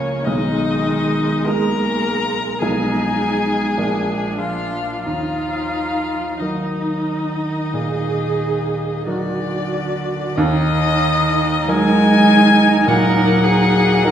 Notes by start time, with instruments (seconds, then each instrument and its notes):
Already playing: cello C#3, grand piano F3 F4 A#4, viola A#3, violin C#4 C#5
0.25 grand piano B1, cello D#3, viola G#3, violin D#4 D#5
1.44 grand piano G#3 D#4 G#4, cello A#3, violin A#4 A#5
2.59 grand piano B1 F3 D#4 G#4, cello G#3, viola D#4, violin G#4 G#5
3.78 grand piano A#1 F3 D4 A#4, viola D4
4.37 cello F3, violin F4 F5
5.01 cello F3, viola D#4, violin F4 F5
5.06 grand piano D#2
6.38 cello D#3, grand piano F#3 D#4, violin D#4 D#5, viola D#4
6.42 grand piano A#4
7.74 grand piano A#2, viola G#4
9.06 cello D3, grand piano F#3 D#4 A#4, viola F#4, violin D5
10.36 grand piano D#2, cello D#3, viola D#4, violin D#5
11.66 grand piano F#3 D#4 A#4, cello G#3, violin G#5
12.87 grand piano A#2, cello F#3, violin A#4 F#5
13.43 violin G#4
14.04 grand piano F#3 D#4 A#4, violin A#4